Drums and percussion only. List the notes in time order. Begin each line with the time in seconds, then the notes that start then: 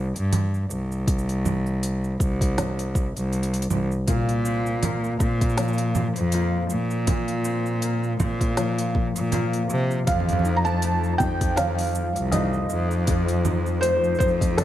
0.16 open hi-hat, cabasa
0.33 open hi-hat, low conga, cabasa
0.54 cabasa
0.71 cabasa
0.92 cabasa
1.07 kick, open hi-hat
1.19 cabasa
1.29 open hi-hat, cabasa
1.45 low conga, cabasa
1.66 cabasa
1.83 open hi-hat, cabasa
2.04 cabasa
2.20 kick, cabasa
2.41 kick, open hi-hat, cabasa
2.58 snare, open hi-hat, low conga, cabasa
2.79 open hi-hat, cabasa
2.95 kick, cabasa
3.17 open hi-hat, cabasa
3.33 open hi-hat, cabasa
3.43 open hi-hat
3.54 open hi-hat, cabasa
3.62 open hi-hat
3.70 low conga, cabasa
3.91 cabasa
4.08 kick, open hi-hat, cabasa
4.29 open hi-hat, cabasa
4.45 cabasa
4.66 cabasa
4.83 open hi-hat, low conga, cabasa
5.04 cabasa
5.20 kick, cabasa
5.41 kick, open hi-hat, cabasa
5.49 cabasa
5.57 snare, open hi-hat, cabasa
5.63 cabasa
5.68 cabasa
5.73 cabasa
5.78 open hi-hat, cabasa
5.95 low conga, cabasa
6.16 open hi-hat, cabasa
6.32 open hi-hat, cabasa
6.70 cabasa
6.91 cabasa
7.07 kick, open hi-hat, low conga, cabasa
7.28 open hi-hat, cabasa
7.45 cabasa
7.66 cabasa
7.82 open hi-hat, cabasa
8.03 cabasa
8.20 kick, low conga, cabasa
8.41 kick, open hi-hat, cabasa
8.57 snare, open hi-hat, cabasa
8.78 open hi-hat, cabasa
8.95 kick
9.16 open hi-hat, cabasa
9.32 open hi-hat, low conga, cabasa
9.53 open hi-hat, cabasa
9.70 cabasa
9.91 cabasa
10.07 kick, open hi-hat, low conga, cabasa
10.14 low conga
10.20 low conga
10.29 open hi-hat, low conga, cabasa
10.33 low conga
10.39 low conga
10.45 cabasa
10.66 cabasa
10.82 open hi-hat, cabasa
11.04 cabasa
11.20 kick, low conga, cabasa
11.41 kick, open hi-hat, cabasa
11.57 snare, open hi-hat, cabasa
11.79 open hi-hat, cabasa
11.81 open hi-hat
11.85 open hi-hat
11.87 open hi-hat
11.89 open hi-hat
11.93 open hi-hat, cabasa
12.16 open hi-hat, cabasa
12.32 open hi-hat, low conga, cabasa
12.53 cabasa
12.70 cabasa
12.91 cabasa
13.07 kick, open hi-hat, cabasa
13.28 open hi-hat, cabasa
13.45 low conga, cabasa
13.66 cabasa
13.83 open hi-hat, cabasa
14.04 cabasa
14.15 cabasa
14.20 kick, cabasa
14.41 kick, open hi-hat, cabasa
14.58 snare, open hi-hat, low conga, cabasa